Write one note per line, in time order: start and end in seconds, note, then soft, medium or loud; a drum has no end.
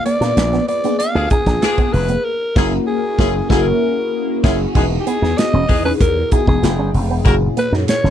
0.00 0.21 A#3 medium
0.00 0.21 B3 medium
0.00 0.21 D4 medium
0.00 0.21 F4 medium
0.00 0.85 G#4 medium
0.05 0.15 A#3 medium
0.05 0.64 D5 loud
0.05 closed hi-hat medium
0.21 0.32 A#2 medium
0.21 0.62 A#3 medium
0.21 0.62 B3 medium
0.21 0.62 D4 medium
0.21 0.31 D4 medium
0.21 0.62 F4 medium
0.21 0.62 B4 medium
0.21 snare soft
0.21 closed hi-hat medium
0.37 0.58 A#1 medium
0.37 snare loud
0.37 closed hi-hat medium
0.53 0.63 B3 medium
0.53 snare soft
0.53 closed hi-hat soft
0.68 0.97 D5 loud
0.68 muted clean electric guitar stroke soft
0.68 closed hi-hat medium
0.84 1.65 A#3 medium
0.84 1.66 B3 medium
0.84 0.94 B3 medium
0.84 1.66 D4 medium
0.84 1.66 F4 medium
0.84 1.66 G#4 medium
0.84 closed hi-hat soft
0.99 1.28 F5 loud
0.99 muted clean electric guitar stroke soft
0.99 closed hi-hat medium
1.15 1.26 D2 medium
1.15 1.28 D4 medium
1.15 1.29 F4 medium
1.15 1.29 G#4 medium
1.30 1.41 D4 medium
1.30 1.94 G#4 medium
1.30 kick medium
1.30 closed hi-hat medium
1.46 1.57 A#1 medium
1.46 1.57 D4 medium
1.46 kick medium
1.46 snare soft
1.46 closed hi-hat soft
1.62 2.07 D4 loud
1.62 2.07 F4 medium
1.62 2.07 G#4 loud
1.62 snare loud
1.62 closed hi-hat medium
1.78 1.88 B3 medium
1.78 kick medium
1.78 closed hi-hat soft
1.93 2.15 F1 medium
1.93 2.25 B4 medium
1.93 muted clean electric guitar stroke soft
1.93 open hi-hat medium
2.09 2.19 A#3 medium
2.09 closed hi-hat medium
2.24 2.60 A#4 medium
2.55 2.78 F#1 medium
2.55 2.77 A#3 medium
2.55 2.77 C#4 medium
2.55 2.72 C#4 loud
2.55 2.77 E4 medium
2.55 2.72 E4 medium
2.55 2.78 F#4 medium
2.55 2.72 G#4 medium
2.55 2.78 A#4 medium
2.55 kick loud
2.55 snare loud
2.55 crash medium
2.87 3.46 G#4 medium
3.18 3.40 F#1 medium
3.18 3.40 A#3 medium
3.18 3.40 C#4 medium
3.18 3.35 C#4 medium
3.18 3.40 E4 medium
3.18 3.35 E4 medium
3.18 3.40 F#4 medium
3.18 3.35 G#4 medium
3.18 3.40 G#4 medium
3.18 kick loud
3.18 snare loud
3.49 3.71 F#1 loud
3.49 3.71 A#3 loud
3.49 3.71 C#4 loud
3.49 3.66 C#4 loud
3.49 3.71 E4 loud
3.49 3.66 E4 medium
3.49 3.71 F#4 loud
3.49 3.66 G#4 loud
3.49 3.72 G#4 medium
3.49 4.40 A#4 medium
3.49 kick loud
3.49 snare loud
4.43 4.65 F#1 medium
4.43 4.65 A#3 loud
4.43 4.59 C#4 loud
4.43 4.65 C#4 loud
4.43 4.59 E4 loud
4.43 4.65 E4 medium
4.43 4.65 F#4 loud
4.43 4.60 G#4 medium
4.43 4.65 G#4 loud
4.43 kick loud
4.43 snare loud
4.43 crash medium
4.75 4.97 E1 loud
4.75 5.56 B3 medium
4.75 4.85 B3 medium
4.75 4.85 D#4 medium
4.75 5.57 D#4 medium
4.75 5.57 E4 medium
4.75 5.57 F#4 medium
4.75 4.85 G#4 loud
4.75 5.57 G#4 loud
4.75 kick loud
4.75 crash loud
4.91 muted clean electric guitar stroke soft
5.00 5.09 G4 medium
5.07 5.16 B3 medium
5.07 5.40 G#4 medium
5.07 closed hi-hat medium
5.22 5.33 E2 loud
5.22 5.32 D#4 medium
5.22 snare soft
5.38 5.85 D#5 loud
5.38 snare loud
5.38 closed hi-hat medium
5.53 5.64 E1 medium
5.53 5.63 C#4 medium
5.68 5.91 E2 medium
5.68 5.89 B3 medium
5.68 5.89 D#4 medium
5.68 5.89 G#4 loud
5.68 muted clean electric guitar stroke soft
5.68 kick medium
5.68 open hi-hat medium
5.85 5.95 C#4 medium
5.85 5.92 B4 medium
6.00 6.22 E2 loud
6.00 6.34 A#4 medium
6.00 muted clean electric guitar stroke soft
6.00 kick loud
6.00 closed hi-hat medium
6.31 6.61 B3 medium
6.31 6.63 D#4 medium
6.31 6.42 D#4 medium
6.31 6.63 E4 medium
6.31 6.63 F#4 medium
6.31 6.48 G#4 medium
6.31 6.62 G#4 medium
6.31 kick medium
6.31 closed hi-hat medium
6.47 6.58 E1 medium
6.47 6.57 D#4 medium
6.47 6.91 G#4 medium
6.47 kick medium
6.62 6.78 F1 loud
6.62 7.13 B3 medium
6.62 7.13 D4 medium
6.62 7.13 F4 medium
6.62 7.13 G#4 medium
6.62 7.13 G5 medium
6.62 snare loud
6.62 closed hi-hat medium
6.78 6.89 G1 medium
6.78 6.89 C#4 medium
6.94 7.10 F1 medium
6.94 muted clean electric guitar stroke soft
6.94 open hi-hat medium
7.10 7.21 E1 medium
7.10 7.20 B3 medium
7.25 7.47 F#1 loud
7.25 8.07 A#2 medium
7.25 8.07 C#4 medium
7.25 7.35 E4 medium
7.25 8.07 E4 medium
7.25 7.35 F#4 medium
7.25 8.07 F#4 medium
7.25 8.07 G#4 medium
7.25 7.35 A#4 loud
7.25 kick loud
7.25 closed hi-hat medium
7.41 muted clean electric guitar stroke soft
7.57 7.67 A#3 medium
7.57 7.72 B4 loud
7.57 closed hi-hat medium
7.72 7.83 F#2 medium
7.72 7.82 D#4 medium
7.72 snare soft
7.88 8.10 C#5 loud
7.88 snare loud
7.88 closed hi-hat loud
8.04 8.10 F#1 loud
8.04 8.10 C#4 medium
8.04 snare soft